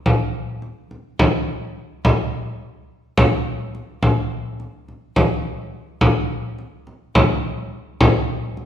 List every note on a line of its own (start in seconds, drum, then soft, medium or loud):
0.06 frame drum soft
0.62 frame drum soft
0.91 frame drum soft
1.19 frame drum medium
2.05 frame drum medium
3.18 frame drum medium
3.75 frame drum soft
4.03 frame drum soft
4.60 frame drum soft
4.88 frame drum soft
5.16 frame drum medium
6.01 frame drum medium
6.58 frame drum soft
6.87 frame drum soft
7.15 frame drum medium
8.01 frame drum medium
8.57 frame drum soft